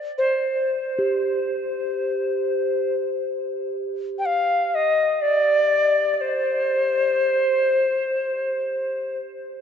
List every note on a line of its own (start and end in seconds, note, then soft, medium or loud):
0.00 1.67 C5 soft
0.18 2.95 C5 medium
0.99 8.70 G4 soft
4.19 4.27 G5 medium
4.26 4.76 F5 medium
4.75 5.23 D#5 medium
5.22 6.14 D5 medium
6.14 6.23 D5 soft
6.21 9.17 C5 medium